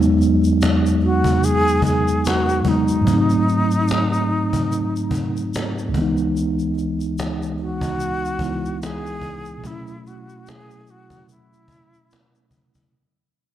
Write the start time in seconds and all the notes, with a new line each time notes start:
Already playing: E2 F#3 G#3 B3 D#4
0.02 cajon slap, shaker
0.18 cajon slap, shaker
0.42 cajon slap, shaker
0.61 cajon slap, shaker
0.83 cajon slap, shaker
1.00 F#4, cajon slap
1.24 cajon bass, shaker
1.42 G#4, cajon slap, shaker
1.68 shaker
1.82 cajon bass
1.86 G#4, shaker
2.07 cajon slap, shaker
2.25 F#4, cajon slap, shaker
2.47 cajon slap, shaker
2.63 E2 F#3 G#3, cajon bass
2.68 B3 D#4
2.88 cajon slap, shaker
3.01 G#2 F#3
3.07 A3, cajon bass, shaker
3.11 C4 D#4
3.30 cajon slap, shaker
3.33 cajon slap
3.47 cajon slap, shaker
3.71 cajon slap, shaker
3.88 cajon slap, shaker
4.12 cajon slap, shaker
4.29 cajon slap
4.53 cajon bass, shaker
4.70 cajon slap, shaker
4.94 cajon slap, shaker
5.11 cajon bass, shaker
5.35 cajon slap, shaker
5.54 cajon slap, shaker
5.75 cajon slap, shaker
5.79 cajon slap
5.88 C#2 D#3
5.94 E3 G#3 B3, cajon bass
6.01 D#4
6.17 cajon slap, shaker
6.35 cajon slap, shaker
6.59 cajon slap, shaker
6.74 cajon slap
6.78 shaker
6.99 cajon slap, shaker
7.18 cajon slap, shaker
7.40 cajon slap, shaker
7.57 F#4, cajon slap
7.81 cajon bass, shaker
7.99 cajon slap, shaker
8.22 cajon slap, shaker
8.37 C#2 E3 G#3, cajon bass
8.42 B3 E4, shaker
8.63 cajon slap, shaker
8.82 G#4, cajon slap, shaker
9.03 cajon slap, shaker
9.21 cajon bass
9.45 cajon slap, shaker
9.57 B2 F#3
9.64 A3 C#4 E4, cajon bass, shaker
9.71 E4
9.87 cajon slap, shaker
9.89 cajon slap
10.03 F#4, cajon slap, shaker
10.28 cajon slap, shaker
10.46 G#4, cajon slap, shaker
10.69 cajon slap, shaker
10.86 cajon slap, shaker
10.90 F#4
11.10 cajon bass, shaker
11.28 E4, cajon slap, shaker
11.51 cajon slap, shaker
11.68 cajon bass, shaker
11.93 cajon slap, shaker
12.11 cajon slap, shaker
12.33 cajon slap, shaker
12.37 cajon slap
12.51 cajon bass, shaker
12.74 cajon bass, shaker